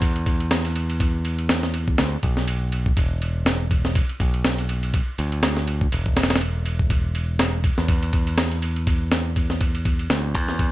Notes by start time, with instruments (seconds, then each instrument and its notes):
Already playing: picked electric bass E2
0.02 kick, ride
0.16 ride
0.26 kick, ride
0.40 ride
0.51 snare, open hi-hat
0.65 ride
0.76 ride
0.90 ride
1.00 kick, ride
1.25 ride
1.39 ride
1.49 snare, ride
1.63 snare
1.74 ride
1.88 kick
1.98 picked electric bass D2, snare, ride
2.23 picked electric bass B1, kick, ride
2.37 snare
2.48 ride
2.72 ride
2.86 kick
2.97 picked electric bass E1, kick, ride
3.22 ride
3.46 snare, ride
3.71 kick, ride
3.85 snare
3.95 kick, ride
4.09 ride
4.20 picked electric bass B1, kick, ride
4.34 ride
4.45 snare, open hi-hat
4.58 ride
4.69 ride
4.83 ride
4.94 kick, ride
5.18 picked electric bass D2, ride
5.32 ride
5.43 snare, ride
5.57 snare
5.68 ride
5.81 kick
5.92 picked electric bass E1, ride
6.06 kick
6.17 snare, ride
6.23 snare, ride
6.30 snare, ride
6.36 snare, ride
6.41 ride
6.66 ride
6.79 kick
6.90 kick, ride
7.15 ride
7.39 snare, ride
7.64 kick, ride
7.78 picked electric bass E2, snare
7.88 kick, ride
8.02 ride
8.13 kick, ride
8.27 ride
8.38 snare, open hi-hat
8.51 ride
8.62 ride
8.76 ride
8.87 kick, ride
9.12 snare, ride
9.36 kick, ride
9.50 snare
9.61 kick, ride
9.75 ride
9.85 kick, ride
9.99 ride
10.10 picked electric bass D2, snare, ride
10.35 picked electric bass E2, kick, ride
10.48 snare
10.59 kick, ride